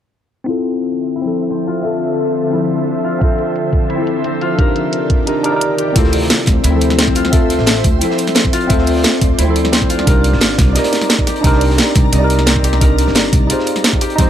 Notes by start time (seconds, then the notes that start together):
0.44 D3 F3 C4 E4 F4 A4 C5 E5
0.50 A4
1.16 E4
1.22 F3 C4 E4
1.27 A4
1.50 C4
1.67 F4
1.81 C4 F4 A4 E5
1.87 A4
2.50 F3 C4 E4
2.56 A4
3.04 F4
3.19 C4 F4 E5, kick, closed hi-hat
3.25 A4
3.39 closed hi-hat
3.56 closed hi-hat
3.73 kick, closed hi-hat
3.90 E4, closed hi-hat
3.96 F3 C4 E4
4.02 A4
4.07 closed hi-hat
4.24 C4, closed hi-hat
4.41 F4, closed hi-hat
4.56 C3 D#3 D4 D#4 G4 A#4 D5, kick, closed hi-hat
4.62 A#4
4.76 closed hi-hat
4.93 closed hi-hat
5.10 kick, closed hi-hat
5.26 D4 D#4 G4 A#4, closed hi-hat
5.43 D4 D#4 G4 A#4, closed hi-hat
5.50 D#4 G4 D5
5.56 A#4
5.61 closed hi-hat
5.78 G4, closed hi-hat
5.93 D2 C4 E4 F4 C5 E5, kick, closed hi-hat
5.99 A4
6.04 snare
6.12 closed hi-hat, open hi-hat
6.22 snare
6.30 snare, closed hi-hat
6.46 D2, kick, snare, closed hi-hat, open hi-hat
6.64 D2 E4, closed hi-hat
6.71 F3 C4 E4
6.76 A4
6.81 closed hi-hat
6.90 snare
6.99 C4, snare, closed hi-hat
7.07 kick, snare
7.15 F4, closed hi-hat, open hi-hat
7.25 snare
7.30 C4 F4 A4 E5, kick, closed hi-hat
7.36 A4
7.50 closed hi-hat
7.58 A1, snare
7.66 snare, closed hi-hat
7.84 D2, kick, closed hi-hat, open hi-hat
7.99 F3 C4 E4 D5, closed hi-hat
8.05 A4
8.10 snare
8.18 closed hi-hat
8.27 snare, closed hi-hat
8.35 snare, closed hi-hat
8.45 kick, snare
8.53 F4, closed hi-hat, open hi-hat
8.61 closed hi-hat
8.67 D2 C4 F4 E5, kick, closed hi-hat
8.73 A4
8.78 snare
8.86 closed hi-hat, open hi-hat
8.96 snare
9.04 snare, closed hi-hat
9.21 D2, kick, closed hi-hat, open hi-hat
9.39 D2 E4, closed hi-hat
9.45 F3 C4 E4
9.50 A4
9.56 closed hi-hat
9.65 snare
9.73 C4, snare, closed hi-hat
9.82 kick, snare
9.90 F4, closed hi-hat, open hi-hat
9.99 snare
10.04 C2 D4 D#4 G4 A#4 A#5, kick, closed hi-hat
10.10 A#4
10.24 closed hi-hat
10.33 G1, snare
10.41 snare, closed hi-hat
10.58 C2, kick, snare, closed hi-hat, open hi-hat
10.73 D#4 G4 D5, snare, closed hi-hat
10.79 A#4
10.84 snare, closed hi-hat
10.92 snare, closed hi-hat
11.01 snare, closed hi-hat
11.09 snare, closed hi-hat
11.19 kick, snare
11.27 G4, snare, closed hi-hat, open hi-hat
11.36 closed hi-hat
11.41 C2 C4 D4 D#4 G4, kick, closed hi-hat
11.47 A#4
11.53 snare
11.61 closed hi-hat, open hi-hat
11.70 snare
11.78 snare, closed hi-hat
11.95 C2, kick, snare, closed hi-hat, open hi-hat
12.12 C2 D#4, closed hi-hat
12.19 D#4 G4 D5
12.24 A#4
12.30 closed hi-hat
12.39 snare
12.46 C4, snare, closed hi-hat
12.56 kick, snare
12.64 G4, closed hi-hat, open hi-hat
12.73 snare
12.79 D4 D#4 A#4, kick, closed hi-hat
12.83 G4 A#4
12.99 closed hi-hat
13.07 G1, snare
13.15 snare, closed hi-hat
13.33 C2, kick, closed hi-hat, open hi-hat
13.47 D#4 F4 G4 G#4 G5, closed hi-hat
13.53 C5
13.59 snare
13.67 closed hi-hat
13.76 snare, closed hi-hat
13.84 snare, closed hi-hat
13.93 kick, snare
14.01 G4, closed hi-hat, open hi-hat
14.10 closed hi-hat
14.16 F2 G#3 C4 D#4 G4, kick, closed hi-hat
14.21 C5